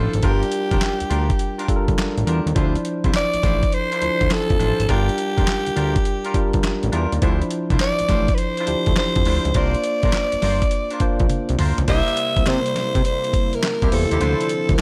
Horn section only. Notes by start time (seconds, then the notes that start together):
Already playing: D4 E4 F4 C5
0.22 D4 F4 G4 A#4
0.71 D4 F4 G4 A#4
1.10 D4 F4 G4 A#4
1.58 D4 F4 G4 A#4
2.26 D4 F4 G4 A#4
2.55 D4 E4 F4 C5
3.04 D4 E4 F4 C5
3.43 D4 E4 F4 C5
3.91 D4 E4 F4 C5
4.59 D4 E4 F4 C5
4.88 D4 F4 G4 A#4
5.37 D4 F4 G4 A#4
5.76 D4 F4 G4 A#4
6.24 D4 F4 G4 A#4
6.92 D4 F4 G4 A#4
7.22 D4 E4 F4 C5
7.70 D4 E4 F4 C5
8.09 D4 E4 F4 C5
8.58 D4 E4 F4 C5
9.26 D4 E4 F4 C5
9.55 D4 F4 A#4 C5
10.04 D4 F4 A#4 C5
10.42 D4 F4 A#4 C5
10.91 D4 F4 A#4 C5
11.58 D4 F4 A#4 C5
11.88 E4 G4 A#4 C5
13.81 E4 G4 A#4 C5
14.11 E4 G4 A#4 C5
14.21 D4 E4 F4 C5